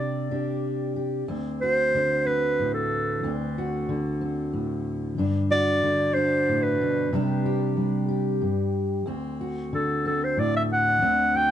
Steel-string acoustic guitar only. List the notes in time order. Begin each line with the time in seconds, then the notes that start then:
Already playing: C3 D4 G4
0.31 D4 G4
0.96 G4
1.28 D2 C4
1.63 F#4
1.95 D3
2.27 C4
2.59 A2
3.23 D2 C4
3.58 F#4
3.89 D3
4.21 C4
4.53 A2
5.18 G2 D4
5.50 F#4
5.83 D3
6.16 D4
6.49 A2
6.81 B2
7.12 C3 G3 D4 G4
7.46 G4
7.77 G3
8.09 G4
8.41 G2
9.06 D2 C4
9.41 F#4
9.73 D3
10.05 C4
10.37 A2
11.02 D2 C4
11.35 F#4